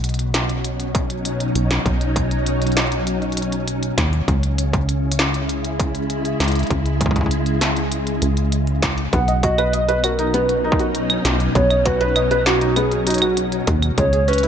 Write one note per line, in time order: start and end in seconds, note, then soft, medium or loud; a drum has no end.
0.00 1.51 B1 medium
0.00 4.28 B2 medium
0.00 closed hi-hat medium
0.09 4.28 F#3 medium
0.09 closed hi-hat soft
0.14 closed hi-hat soft
0.19 closed hi-hat soft
0.29 6.22 C#4 medium
0.34 snare loud
0.34 closed hi-hat medium
0.49 closed hi-hat soft
0.65 closed hi-hat medium
0.80 closed hi-hat soft
0.95 4.28 D#4 medium
0.95 kick loud
0.95 closed hi-hat medium
1.10 closed hi-hat soft
1.25 closed hi-hat medium
1.40 closed hi-hat soft
1.55 1.80 B1 medium
1.55 closed hi-hat medium
1.71 snare loud
1.71 closed hi-hat soft
1.86 3.93 B1 medium
1.86 kick loud
1.86 closed hi-hat medium
2.01 closed hi-hat soft
2.16 kick loud
2.16 closed hi-hat medium
2.31 closed hi-hat soft
2.46 closed hi-hat medium
2.62 closed hi-hat soft
2.67 closed hi-hat soft
2.72 closed hi-hat soft
2.77 snare loud
2.77 closed hi-hat medium
2.82 closed hi-hat soft
2.87 closed hi-hat soft
2.92 closed hi-hat soft
3.07 closed hi-hat medium
3.22 closed hi-hat soft
3.32 closed hi-hat soft
3.37 closed hi-hat medium
3.42 closed hi-hat soft
3.52 closed hi-hat soft
3.68 closed hi-hat medium
3.83 closed hi-hat soft
3.98 4.22 D#2 medium
3.98 kick loud
3.98 snare loud
3.98 closed hi-hat medium
4.13 closed hi-hat soft
4.28 6.36 C#2 medium
4.28 9.13 C#3 medium
4.28 kick loud
4.28 closed hi-hat medium
4.43 closed hi-hat soft
4.58 closed hi-hat medium
4.73 kick loud
4.73 closed hi-hat soft
4.89 closed hi-hat medium
4.95 9.13 G#3 medium
4.95 9.13 E4 medium
5.12 closed hi-hat medium
5.19 snare loud
5.34 closed hi-hat soft
5.49 closed hi-hat medium
5.65 closed hi-hat soft
5.80 kick loud
5.80 closed hi-hat medium
5.95 closed hi-hat soft
6.10 closed hi-hat medium
6.25 closed hi-hat soft
6.40 6.65 C#2 medium
6.40 snare loud
6.40 closed hi-hat medium
6.44 closed hi-hat medium
6.48 closed hi-hat medium
6.52 closed hi-hat soft
6.55 closed hi-hat soft
6.59 closed hi-hat soft
6.63 closed hi-hat soft
6.67 8.21 C#2 medium
6.67 kick loud
6.67 closed hi-hat soft
6.71 closed hi-hat medium
6.86 closed hi-hat soft
7.01 kick loud
7.01 closed hi-hat medium
7.06 kick medium
7.11 kick medium
7.16 kick medium
7.16 closed hi-hat soft
7.21 kick soft
7.26 kick soft
7.31 closed hi-hat medium
7.46 closed hi-hat soft
7.61 snare loud
7.61 closed hi-hat medium
7.76 closed hi-hat soft
7.92 closed hi-hat medium
8.07 closed hi-hat soft
8.22 9.08 C#2 medium
8.22 closed hi-hat medium
8.37 closed hi-hat soft
8.52 closed hi-hat medium
8.67 closed hi-hat soft
8.82 kick loud
8.82 snare loud
8.82 closed hi-hat medium
8.98 closed hi-hat soft
9.13 11.20 B1 medium
9.13 13.98 B2 medium
9.13 9.18 B3 medium
9.13 9.45 F#5 loud
9.13 kick loud
9.13 closed hi-hat medium
9.28 9.34 D#5 medium
9.28 closed hi-hat soft
9.43 9.57 F#4 medium
9.43 10.06 D#5 loud
9.43 kick loud
9.43 closed hi-hat medium
9.52 13.98 F#3 medium
9.58 9.72 B4 loud
9.58 closed hi-hat soft
9.58 claves soft
9.73 9.83 D#5 medium
9.73 closed hi-hat medium
9.89 9.98 B4 loud
9.89 closed hi-hat soft
9.98 14.48 C#4 medium
9.98 13.98 D#4 medium
10.04 10.09 F#4 medium
10.04 10.34 A#4 medium
10.04 closed hi-hat medium
10.04 claves medium
10.19 10.33 D#4 loud
10.19 closed hi-hat soft
10.34 10.48 B3 loud
10.34 10.66 B4 medium
10.34 closed hi-hat medium
10.49 closed hi-hat soft
10.64 10.78 D#4 medium
10.64 10.95 A#4 medium
10.72 kick loud
10.79 10.93 F#4 medium
10.79 closed hi-hat soft
10.95 closed hi-hat medium
11.10 closed hi-hat soft
11.10 claves medium
11.25 11.50 B1 medium
11.25 snare loud
11.25 closed hi-hat medium
11.40 closed hi-hat soft
11.55 13.63 B1 medium
11.55 11.61 B3 medium
11.55 11.87 C#5 loud
11.55 kick loud
11.55 closed hi-hat medium
11.70 11.76 D#5 medium
11.70 closed hi-hat soft
11.70 claves medium
11.86 11.99 F#4 medium
11.86 12.46 B4 loud
11.86 kick medium
11.86 closed hi-hat medium
12.01 12.15 B4 loud
12.01 closed hi-hat soft
12.16 12.25 D#5 medium
12.16 closed hi-hat medium
12.16 claves medium
12.31 12.40 B4 loud
12.31 closed hi-hat soft
12.46 12.78 F#4 medium
12.46 12.52 F#4 loud
12.46 snare loud
12.61 12.75 D#4 medium
12.61 closed hi-hat soft
12.76 12.90 B3 loud
12.76 13.08 G#4 medium
12.76 closed hi-hat medium
12.76 claves soft
12.92 closed hi-hat soft
13.07 13.21 D#4 medium
13.07 13.37 F#4 medium
13.07 closed hi-hat medium
13.10 closed hi-hat medium
13.14 closed hi-hat medium
13.18 closed hi-hat soft
13.22 13.36 F#4 medium
13.22 closed hi-hat soft
13.22 claves medium
13.37 closed hi-hat medium
13.52 closed hi-hat soft
13.67 13.92 D#2 medium
13.67 kick loud
13.67 closed hi-hat medium
13.82 closed hi-hat soft
13.82 claves soft
13.98 14.48 C#2 loud
13.98 14.48 C#3 medium
13.98 14.03 G#3 medium
13.98 14.30 C#5 loud
13.98 kick medium
13.98 closed hi-hat medium
14.13 14.18 G#4 medium
14.13 closed hi-hat soft
14.28 14.42 C#4 loud
14.28 14.48 B4 loud
14.28 closed hi-hat soft
14.33 14.48 G#3 medium
14.33 closed hi-hat medium
14.38 closed hi-hat medium
14.43 14.48 E4 loud
14.43 closed hi-hat soft